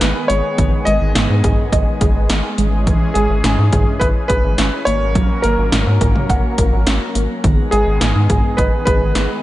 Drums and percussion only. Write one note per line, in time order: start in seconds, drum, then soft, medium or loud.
0.01 snare loud
0.01 closed hi-hat medium
0.30 closed hi-hat medium
0.58 kick loud
0.58 closed hi-hat medium
0.87 closed hi-hat medium
1.15 snare loud
1.15 closed hi-hat medium
1.15 mid tom medium
1.44 kick medium
1.44 closed hi-hat medium
1.44 mid tom medium
1.73 kick medium
1.73 closed hi-hat medium
2.01 kick medium
2.01 closed hi-hat medium
2.30 snare loud
2.30 closed hi-hat medium
2.58 closed hi-hat medium
2.87 kick loud
2.87 closed hi-hat medium
3.15 closed hi-hat medium
3.44 snare loud
3.44 closed hi-hat medium
3.44 mid tom medium
3.73 kick medium
3.73 closed hi-hat medium
3.73 mid tom medium
4.01 kick medium
4.01 closed hi-hat medium
4.30 kick medium
4.30 closed hi-hat medium
4.58 snare loud
4.58 closed hi-hat medium
4.87 closed hi-hat medium
5.15 kick loud
5.15 closed hi-hat medium
5.44 closed hi-hat medium
5.72 snare loud
5.72 closed hi-hat medium
5.72 mid tom medium
6.01 kick medium
6.01 closed hi-hat medium
6.01 mid tom medium
6.15 mid tom medium
6.30 kick medium
6.30 closed hi-hat medium
6.58 kick medium
6.58 closed hi-hat medium
6.87 snare loud
6.87 closed hi-hat medium
7.15 closed hi-hat medium
7.44 kick loud
7.44 closed hi-hat medium
7.72 closed hi-hat medium
8.01 snare loud
8.01 closed hi-hat medium
8.01 mid tom medium
8.30 kick medium
8.30 closed hi-hat medium
8.30 mid tom medium
8.58 kick medium
8.58 closed hi-hat medium
8.87 kick medium
8.87 closed hi-hat medium
9.15 snare loud
9.15 closed hi-hat medium